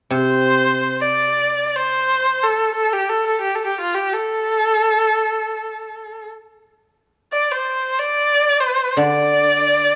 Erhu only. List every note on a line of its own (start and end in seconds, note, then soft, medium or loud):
0.14 0.98 C5 medium
1.01 1.65 D5 medium
1.65 1.78 D5 medium
1.76 2.45 C5 medium
2.43 2.72 A4 medium
2.75 2.94 A4 medium
2.93 3.11 G4 medium
3.09 3.24 A4 medium
3.27 3.38 A4 medium
3.41 3.57 G4 medium
3.55 3.66 A4 medium
3.66 3.79 G4 medium
3.81 3.96 F4 medium
3.94 4.15 G4 medium
4.13 6.25 A4 medium
7.33 7.52 D5 medium
7.51 8.00 C5 medium
7.99 8.62 D5 medium
8.61 8.99 C5 medium
8.98 9.95 D5 medium